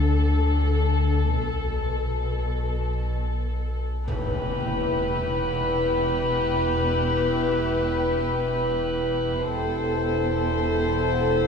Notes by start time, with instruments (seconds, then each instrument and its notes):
Already playing: double bass section D2, sub bass D2, cello section D3, violin section A4
0.70 vibraphone A4 A5
1.37 sub bass B1, double bass section B1, cello section B2
4.07 sub bass E1, double bass section E1, cello section E2, viola section E4, violin section G4 B4, impact
5.45 vibraphone F#5
9.46 sub bass E1, double bass section E1, cello section E2, viola section E4, vibraphone G4 G5, violin section A4 C5
11.12 vibraphone F#5